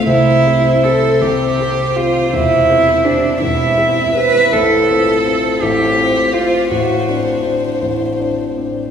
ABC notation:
X:1
M:6/8
L:1/8
Q:3/8=54
K:C
V:1 name="Violin"
c6 | c3 e3 | c6- | c6 |]
V:2 name="Cello"
E2 A G2 F | E2 D E2 B | A3 G2 F | ^F2 z4 |]
V:3 name="Grand piano"
[C,,C,] [CGc] [CGc] [C,,C,] [CGc] [CGc] | [E,,,E,,] [CGc] [CGc] [E,,,E,,] [CGc] [CGc] | [A,,,A,,] [CFc] [CFc] [A,,,A,,] [CFc] [CFc] | [A,,,A,,] [CDd] [CDd] [A,,,A,,] [CDd] [CDd] |]